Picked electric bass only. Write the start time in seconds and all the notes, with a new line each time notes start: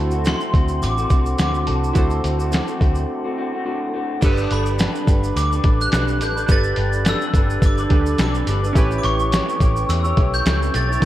Already playing: D2
0.54 D2
0.82 A1
1.11 C2
1.39 D2
1.68 C2
1.96 D2
2.24 D2
2.81 D2
4.23 G1
4.51 G1
5.08 G1
5.36 D2
5.64 A1
5.92 B1
6.21 A1
6.49 G1
6.77 G1
7.34 G1
7.62 G1
7.91 D2
8.18 B1
8.47 G1
8.76 A1
9.04 A1
9.61 A1
9.89 E2
10.17 B1
10.46 C#2
10.75 B1